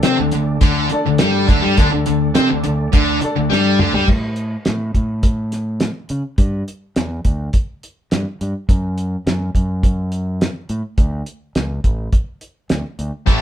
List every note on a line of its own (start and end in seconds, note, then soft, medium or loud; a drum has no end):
0.00 0.17 C3 medium
0.00 1.76 A3 medium
0.00 0.17 C4 loud
0.00 0.38 D4 medium
0.00 1.76 D4 medium
0.00 0.38 A4 medium
0.00 1.75 A4 medium
0.00 0.39 D5 medium
0.00 1.75 D5 medium
0.00 snare loud
0.00 closed hi-hat medium
0.17 0.33 D2 medium
0.17 0.31 D3 medium
0.32 0.61 D2 medium
0.32 0.56 D3 medium
0.32 closed hi-hat medium
0.61 0.89 D2 medium
0.61 0.89 D3 loud
0.61 kick loud
0.61 closed hi-hat medium
0.89 1.61 D4 medium
0.89 1.61 A4 medium
0.89 muted overdriven electric guitar stroke medium
0.89 muted distorted electric guitar stroke medium
0.89 closed hi-hat medium
0.94 1.61 D5 medium
0.94 muted fingered electric bass stroke soft
1.06 1.20 D2 medium
1.06 1.20 D3 medium
1.18 1.48 G3 loud
1.18 snare loud
1.18 closed hi-hat medium
1.23 1.48 G2 medium
1.46 1.62 D2 medium
1.46 1.61 D3 medium
1.46 kick loud
1.46 closed hi-hat medium
1.61 1.76 G3 medium
1.66 1.78 G2 medium
1.77 1.92 D2 medium
1.77 1.91 D3 loud
1.77 4.08 A3 medium
1.77 2.70 D4 medium
1.77 4.07 D4 medium
1.77 2.70 A4 medium
1.77 4.08 A4 medium
1.77 2.71 D5 medium
1.77 4.08 D5 medium
1.77 kick loud
1.77 closed hi-hat medium
1.92 2.06 D2 medium
1.92 2.05 D3 medium
2.06 2.35 D2 medium
2.06 2.29 D3 medium
2.06 closed hi-hat medium
2.35 2.50 C3 medium
2.35 2.49 C4 loud
2.35 snare loud
2.35 closed hi-hat medium
2.50 2.64 D2 medium
2.50 2.63 D3 medium
2.64 2.92 D2 medium
2.64 2.87 D3 medium
2.64 closed hi-hat medium
2.93 3.20 D2 medium
2.93 3.21 D3 loud
2.93 kick loud
2.93 closed hi-hat medium
3.21 3.92 D4 medium
3.21 3.92 A4 medium
3.21 3.92 D5 medium
3.21 muted distorted electric guitar stroke medium
3.21 muted overdriven electric guitar stroke medium
3.21 muted fingered electric bass stroke soft
3.21 closed hi-hat medium
3.36 3.51 D2 medium
3.36 3.50 D3 medium
3.50 3.78 G2 medium
3.50 3.78 G3 medium
3.50 snare medium
3.79 3.94 D2 medium
3.79 3.93 D3 medium
3.79 mid tom medium
3.94 4.08 G2 medium
3.94 4.08 G3 loud
3.94 floor tom medium
4.08 4.55 A2 medium
4.08 kick loud
4.08 crash medium
4.36 closed hi-hat medium
4.65 4.90 A2 medium
4.65 snare medium
4.65 closed hi-hat medium
4.94 5.88 A2 medium
4.94 kick medium
4.94 closed hi-hat medium
5.23 kick medium
5.23 closed hi-hat medium
5.52 snare soft
5.52 closed hi-hat medium
5.80 snare medium
5.80 closed hi-hat medium
6.09 6.22 C#3 medium
6.09 closed hi-hat medium
6.38 6.62 G2 medium
6.38 kick loud
6.38 closed hi-hat medium
6.68 closed hi-hat medium
6.96 7.20 E2 medium
6.96 snare medium
6.96 closed hi-hat medium
7.25 7.48 D2 medium
7.25 kick medium
7.25 closed hi-hat medium
7.53 kick medium
7.53 closed hi-hat medium
7.83 closed hi-hat soft
8.11 8.24 G2 medium
8.11 snare loud
8.11 closed hi-hat medium
8.41 8.52 G2 medium
8.41 closed hi-hat medium
8.69 9.15 F#2 medium
8.69 kick loud
8.69 closed hi-hat medium
8.98 closed hi-hat medium
9.26 9.50 F#2 medium
9.26 snare loud
9.26 closed hi-hat medium
9.55 10.48 F#2 medium
9.55 kick medium
9.55 closed hi-hat medium
9.83 kick loud
9.83 closed hi-hat medium
10.12 closed hi-hat medium
10.41 snare loud
10.41 closed hi-hat medium
10.69 10.81 A2 medium
10.69 closed hi-hat medium
10.98 11.21 D2 medium
10.98 kick loud
10.98 closed hi-hat medium
11.26 closed hi-hat medium
11.55 11.79 C#2 medium
11.55 snare medium
11.55 closed hi-hat medium
11.84 12.07 A1 medium
11.84 kick medium
11.84 closed hi-hat medium
12.13 kick loud
12.13 closed hi-hat medium
12.41 closed hi-hat medium
12.70 12.82 D2 medium
12.70 snare loud
12.70 closed hi-hat medium
12.99 13.10 D2 medium
12.99 closed hi-hat medium
13.26 13.41 A1 medium
13.26 13.41 A2 medium
13.26 13.41 E3 medium
13.26 13.41 A3 medium
13.26 kick medium
13.26 closed hi-hat medium